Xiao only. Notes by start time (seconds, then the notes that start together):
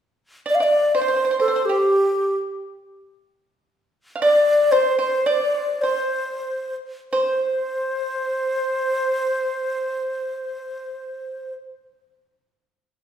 0.49 D5
0.55 F5
0.64 D5
0.96 C5
1.40 A4
1.65 G4
4.23 D5
4.72 C5
5.00 C5
5.26 D5
5.82 C5
7.12 C5